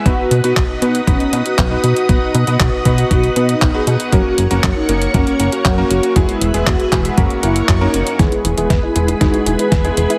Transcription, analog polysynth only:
X:1
M:4/4
L:1/16
Q:1/4=118
K:B
V:1 name="Analog polysynth"
F3 F2 D3 C3 F3 F2- | F D3 F3 F3 D3 G3 | F3 F2 D3 C3 F3 F2- | F E3 F3 F3 E3 D3 |
[GB]3 [GB]2 [EG]3 [DF]3 [GB]3 [GB]2 |]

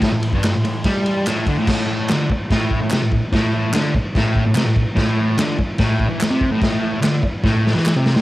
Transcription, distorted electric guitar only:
X:1
M:4/4
L:1/16
Q:1/4=146
K:Glyd
V:1 name="Distorted electric guitar" clef=bass
A,, A,,2 G,,2 A,, A,,2 G,4 A,,2 D, A,, | A,,4 D,2 z2 A,,3 A,, =C, A,,2 z | A,,4 D,2 z2 A,,3 A,, =C, A,,2 z | A,,4 D,2 z2 A,,3 E,2 =C,2 A,, |
A,,4 D,2 z2 A,,3 E,2 =C,2 A,, |]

